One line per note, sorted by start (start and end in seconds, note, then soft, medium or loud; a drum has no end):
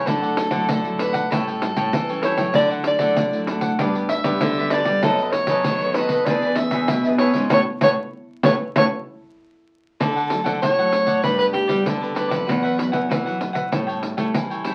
0.05 0.66 D3 medium
0.05 0.47 D3 medium
0.05 0.49 F#3 medium
0.05 0.49 A3 medium
0.05 0.20 E4 medium
0.05 0.49 E4 medium
0.05 0.21 A4 medium
0.05 0.99 A4 medium
0.05 0.21 D5 medium
0.05 0.20 F#5 medium
0.05 pandeiro medium
0.21 0.35 A4 soft
0.21 0.36 D5 soft
0.21 0.36 F#5 soft
0.21 pandeiro soft
0.37 muted cavaquinho stroke soft
0.37 pandeiro medium
0.51 0.66 D3 medium
0.51 0.78 F#3 medium
0.51 0.79 A3 medium
0.51 0.79 E4 medium
0.51 0.98 A4 soft
0.51 0.98 D5 medium
0.51 0.97 F#5 medium
0.51 pandeiro medium
0.69 1.28 A2 medium
0.69 1.22 D3 medium
0.69 pandeiro medium
0.85 1.26 F#3 medium
0.85 1.26 A3 medium
0.85 1.27 E4 medium
0.85 pandeiro soft
0.98 1.13 E4 soft
0.98 1.14 A4 soft
0.98 1.33 B4 medium
0.98 1.13 D5 soft
0.98 1.12 F#5 soft
0.98 pandeiro medium
1.13 1.30 A4 soft
1.13 1.29 D5 medium
1.13 1.28 F#5 medium
1.13 pandeiro medium
1.31 1.90 A2 medium
1.31 1.71 A2 medium
1.31 1.57 G3 medium
1.31 1.58 C#4 soft
1.31 1.45 E4 medium
1.31 1.58 E4 medium
1.31 2.24 A4 medium
1.31 1.46 A4 medium
1.31 1.46 C#5 medium
1.31 1.46 G5 medium
1.31 pandeiro medium
1.47 1.61 A4 soft
1.47 1.62 C#5 soft
1.47 1.61 G5 soft
1.47 pandeiro soft
1.61 1.91 G3 medium
1.61 1.91 C#4 soft
1.61 1.91 E4 medium
1.61 muted cavaquinho stroke soft
1.61 pandeiro medium
1.76 1.91 A2 medium
1.76 2.08 A4 soft
1.76 2.07 C#5 medium
1.76 2.07 G5 medium
1.76 pandeiro medium
1.93 2.52 E3 medium
1.93 2.33 E3 loud
1.93 pandeiro medium
2.08 2.35 G3 medium
2.08 2.35 C#4 medium
2.08 2.35 E4 medium
2.08 2.23 A4 soft
2.08 2.24 C#5 soft
2.08 2.23 G5 soft
2.08 pandeiro soft
2.23 2.38 E4 medium
2.23 2.39 A4 medium
2.23 2.55 C#5 medium
2.23 2.38 C#5 medium
2.23 2.37 G5 medium
2.23 pandeiro medium
2.37 2.52 A2 medium
2.37 2.96 F#3 medium
2.37 2.96 A3 medium
2.37 2.96 E4 medium
2.37 2.54 A4 soft
2.37 2.54 C#5 soft
2.37 2.53 G5 soft
2.37 pandeiro medium
2.54 3.14 D3 medium
2.54 2.95 D3 medium
2.54 2.69 E4 medium
2.54 2.70 A4 medium
2.54 2.69 D5 medium
2.54 2.70 D5 medium
2.54 2.70 F#5 medium
2.54 pandeiro medium
2.70 2.85 A4 soft
2.70 2.85 D5 soft
2.70 2.85 F#5 medium
2.70 pandeiro soft
2.84 3.45 D5 medium
2.84 muted cavaquinho stroke soft
2.84 pandeiro medium
2.99 3.14 D3 medium
2.99 3.27 F#3 medium
2.99 3.27 A3 medium
2.99 3.27 E4 medium
2.99 3.47 A4 soft
2.99 3.47 D5 medium
2.99 3.46 F#5 medium
2.99 pandeiro medium
3.16 3.76 A2 medium
3.16 3.71 D3 medium
3.16 pandeiro medium
3.33 3.75 F#3 medium
3.33 3.75 A3 medium
3.33 3.75 E4 medium
3.33 pandeiro soft
3.47 3.62 E4 soft
3.47 3.63 A4 soft
3.47 3.62 D5 soft
3.47 3.60 F#5 soft
3.47 pandeiro medium
3.61 3.78 A4 medium
3.61 3.78 D5 medium
3.61 3.77 F#5 medium
3.61 pandeiro medium
3.79 4.19 G2 loud
3.79 4.38 G3 soft
3.79 4.08 B3 medium
3.79 3.94 D4 medium
3.79 4.09 D4 medium
3.79 4.09 G4 medium
3.79 3.94 G4 medium
3.79 3.94 B4 medium
3.79 3.95 D5 medium
3.79 pandeiro medium
3.95 4.09 G4 soft
3.95 4.10 B4 soft
3.95 4.10 D5 soft
3.95 pandeiro soft
4.09 4.73 E5 loud
4.09 muted cavaquinho stroke soft
4.09 pandeiro medium
4.24 4.38 G2 medium
4.24 4.51 B3 medium
4.24 4.52 D4 medium
4.24 4.52 G4 medium
4.24 4.56 G4 medium
4.24 4.55 B4 medium
4.24 4.55 D5 medium
4.24 pandeiro medium
4.41 4.81 D3 loud
4.41 5.01 D3 medium
4.41 pandeiro medium
4.57 4.99 B3 medium
4.57 5.00 D4 medium
4.57 5.00 G4 medium
4.57 4.71 G4 soft
4.57 4.72 B4 soft
4.57 4.72 D5 soft
4.57 pandeiro soft
4.70 4.86 D4 medium
4.70 4.87 G4 medium
4.70 4.87 B4 medium
4.70 5.03 D5 medium
4.70 4.85 D5 medium
4.70 pandeiro medium
4.85 5.00 G3 medium
4.85 5.03 G4 soft
4.85 5.02 B4 soft
4.85 5.01 D5 soft
4.85 pandeiro medium
5.03 5.44 F#2 medium
5.03 5.63 F#3 medium
5.03 5.45 B3 medium
5.03 5.18 D#4 medium
5.03 5.45 D#4 medium
5.03 5.33 A4 medium
5.03 5.18 A4 medium
5.03 5.46 A4 medium
5.03 5.19 B4 medium
5.03 5.19 D#5 medium
5.03 pandeiro medium
5.19 5.35 B4 soft
5.19 5.35 D#5 medium
5.19 pandeiro soft
5.23 5.34 A4 soft
5.32 5.96 C#5 loud
5.32 muted cavaquinho stroke soft
5.32 pandeiro medium
5.47 5.63 F#2 medium
5.47 5.76 B3 medium
5.47 5.76 D#4 medium
5.47 5.76 A4 medium
5.47 5.95 A4 medium
5.47 5.95 B4 medium
5.47 5.95 D#5 medium
5.47 pandeiro medium
5.64 6.19 D#3 medium
5.64 6.25 F#3 medium
5.64 pandeiro medium
5.81 6.24 B3 medium
5.81 6.24 D#4 medium
5.81 6.24 A4 medium
5.81 pandeiro soft
5.94 6.11 D#4 soft
5.94 6.11 A4 soft
5.94 6.27 B4 medium
5.94 6.11 B4 medium
5.94 6.10 D#5 medium
5.94 pandeiro medium
6.09 6.27 A4 medium
6.09 6.26 B4 medium
6.09 6.26 D#5 medium
6.09 pandeiro medium
6.26 6.68 E2 medium
6.26 6.87 E3 medium
6.26 6.54 B3 medium
6.26 6.42 D4 medium
6.26 6.55 D4 medium
6.26 6.43 G#4 medium
6.26 6.58 D5 medium
6.26 pandeiro medium
6.30 6.55 G#4 medium
6.30 6.43 B4 medium
6.30 6.43 E5 medium
6.42 6.58 B4 soft
6.42 6.58 E5 soft
6.42 pandeiro soft
6.47 6.58 G#4 soft
6.55 7.00 B3 medium
6.55 7.00 D4 medium
6.55 7.01 G#4 medium
6.55 7.09 E5 loud
6.55 muted cavaquinho stroke soft
6.55 pandeiro medium
6.71 6.87 E2 medium
6.71 7.04 G#4 medium
6.71 7.04 B4 medium
6.71 7.03 E5 medium
6.71 pandeiro medium
6.88 7.49 B2 medium
6.88 7.30 B2 loud
6.88 pandeiro medium
7.05 7.32 B3 medium
7.05 7.32 D4 medium
7.05 7.32 G#4 medium
7.05 7.19 G#4 soft
7.05 7.19 B4 soft
7.05 7.20 E5 soft
7.05 pandeiro soft
7.18 7.34 D4 medium
7.18 7.34 G#4 medium
7.18 7.34 B4 medium
7.18 7.48 C#5 medium
7.18 7.33 E5 medium
7.18 pandeiro medium
7.34 7.49 G#2 medium
7.34 7.51 E3 medium
7.34 7.51 B3 medium
7.34 7.50 C#4 medium
7.34 7.50 G#4 soft
7.34 7.50 B4 soft
7.34 7.49 E5 soft
7.34 pandeiro medium
7.50 7.64 A2 medium
7.50 7.62 A3 medium
7.50 7.62 B3 medium
7.50 7.62 C#4 medium
7.50 7.62 A4 medium
7.50 7.62 B4 medium
7.50 7.62 C#5 medium
7.50 7.61 C#5 medium
7.50 pandeiro medium
7.81 7.95 A2 medium
7.81 7.92 A3 medium
7.81 7.92 B3 medium
7.81 7.92 C#4 medium
7.81 7.92 A4 medium
7.81 7.92 B4 medium
7.81 7.92 C#5 medium
7.81 7.91 C#5 medium
7.81 pandeiro loud
8.43 8.56 A2 medium
8.43 8.54 A3 medium
8.43 8.54 B3 medium
8.43 8.54 C#4 medium
8.43 8.54 A4 medium
8.43 8.54 B4 medium
8.43 8.54 C#5 medium
8.43 8.53 C#5 medium
8.43 pandeiro loud
8.76 8.88 A2 medium
8.76 8.86 A3 medium
8.76 8.86 B3 medium
8.76 8.87 C#4 medium
8.76 8.86 A4 medium
8.76 8.86 B4 medium
8.76 8.86 C#5 medium
8.76 8.85 C#5 medium
8.76 pandeiro loud
10.00 10.40 D3 medium
10.00 10.60 D3 soft
10.00 10.14 E4 soft
10.00 10.59 A4 medium
10.00 10.15 A4 soft
10.00 10.15 D5 soft
10.00 10.14 F#5 medium
10.00 pandeiro medium
10.15 10.29 A4 medium
10.15 10.29 D5 medium
10.15 10.29 F#5 medium
10.15 pandeiro soft
10.29 10.60 F#3 medium
10.29 10.60 A3 soft
10.29 10.61 E4 medium
10.29 muted cavaquinho stroke soft
10.29 pandeiro medium
10.44 10.59 D3 medium
10.44 10.61 A4 soft
10.44 10.60 D5 medium
10.44 10.60 F#5 medium
10.44 pandeiro medium
10.61 11.21 A2 medium
10.61 10.89 A2 medium
10.61 10.76 E4 soft
10.61 10.77 A4 soft
10.61 11.20 C#5 loud
10.61 10.77 D5 soft
10.61 10.77 F#5 soft
10.61 pandeiro medium
10.78 11.20 F#3 medium
10.78 11.20 A3 medium
10.78 11.20 E4 medium
10.78 11.08 A4 soft
10.78 11.05 F#5 medium
10.78 pandeiro soft
10.93 pandeiro medium
11.07 11.23 A4 medium
11.07 11.23 D5 medium
11.07 11.22 F#5 medium
11.07 pandeiro medium
11.23 11.83 G2 soft
11.23 11.64 G2 medium
11.23 11.66 G3 soft
11.23 11.66 B3 soft
11.23 11.38 D4 soft
11.23 11.66 D4 medium
11.23 11.39 G4 soft
11.23 11.38 B4 medium
11.23 11.39 B4 soft
11.23 11.38 D5 soft
11.23 pandeiro medium
11.39 11.53 G4 soft
11.39 11.46 B4 medium
11.39 11.53 B4 medium
11.39 11.54 D5 medium
11.39 pandeiro soft
11.53 11.83 G4 medium
11.53 muted cavaquinho stroke soft
11.53 pandeiro medium
11.68 12.12 G3 medium
11.68 11.83 G3 medium
11.68 12.12 B3 medium
11.68 12.12 D4 medium
11.68 12.00 G4 soft
11.68 12.00 B4 soft
11.68 11.99 D5 medium
11.68 pandeiro medium
11.85 12.45 D3 medium
11.85 12.34 D3 medium
11.85 12.17 A4 medium
11.85 pandeiro medium
12.01 12.14 G4 soft
12.01 12.15 B4 soft
12.01 12.15 D5 soft
12.01 pandeiro soft
12.15 12.43 G3 soft
12.15 12.43 B3 medium
12.15 12.30 D4 medium
12.15 12.43 D4 medium
12.15 12.30 G4 medium
12.15 12.29 B4 medium
12.15 13.10 B4 medium
12.15 12.28 D5 medium
12.15 pandeiro medium
12.29 12.45 F2 medium
12.29 12.46 G4 soft
12.29 12.46 B4 medium
12.29 12.45 D5 medium
12.29 pandeiro medium
12.46 12.89 E2 medium
12.46 13.07 E3 soft
12.46 12.74 F#3 medium
12.46 12.74 B3 soft
12.46 12.75 E4 medium
12.46 12.62 F#4 soft
12.46 12.62 B4 medium
12.46 12.63 E5 soft
12.46 12.62 F#5 soft
12.46 pandeiro medium
12.63 12.77 B4 medium
12.63 12.78 E5 medium
12.63 12.78 F#5 medium
12.63 pandeiro soft
12.78 13.08 F#3 medium
12.78 13.08 B3 soft
12.78 13.08 E4 medium
12.78 muted cavaquinho stroke soft
12.78 pandeiro medium
12.92 13.08 E2 medium
12.92 13.09 B4 medium
12.92 13.09 E5 medium
12.92 13.08 F#5 medium
12.92 pandeiro medium
13.09 13.70 B2 medium
13.09 13.37 E3 medium
13.09 13.24 F#4 soft
13.09 13.25 B4 soft
13.09 13.25 E5 medium
13.09 13.24 F#5 soft
13.09 pandeiro medium
13.26 13.68 F#3 medium
13.26 13.68 B3 medium
13.26 13.68 E4 medium
13.26 13.54 B4 medium
13.26 13.53 E5 medium
13.26 13.52 F#5 medium
13.26 pandeiro soft
13.41 pandeiro medium
13.53 13.71 B4 soft
13.53 13.70 E5 soft
13.53 13.70 F#5 medium
13.53 pandeiro medium
13.72 14.32 A2 soft
13.72 14.12 A2 medium
13.72 14.15 G3 medium
13.72 14.14 C#4 medium
13.72 13.87 E4 medium
13.72 14.15 E4 medium
13.72 13.87 A4 soft
13.72 13.87 C#5 medium
13.72 13.86 G5 medium
13.72 pandeiro medium
13.87 14.01 A4 medium
13.87 14.02 C#5 medium
13.87 14.02 G5 medium
13.87 pandeiro soft
14.02 muted cavaquinho stroke soft
14.02 pandeiro medium
14.17 14.60 G3 medium
14.17 14.32 A3 medium
14.17 14.60 C#4 medium
14.17 14.60 E4 medium
14.17 14.49 A4 soft
14.17 14.49 C#5 medium
14.17 14.48 G5 medium
14.17 pandeiro medium
14.34 14.75 E3 medium
14.34 pandeiro medium
14.50 14.64 A4 soft
14.50 14.65 C#5 soft
14.50 14.65 G5 soft
14.50 pandeiro soft
14.64 14.75 G3 medium
14.64 14.75 C#4 medium
14.64 14.75 E4 medium
14.64 14.75 A4 medium
14.64 14.75 C#5 medium
14.64 14.75 G5 medium
14.64 pandeiro medium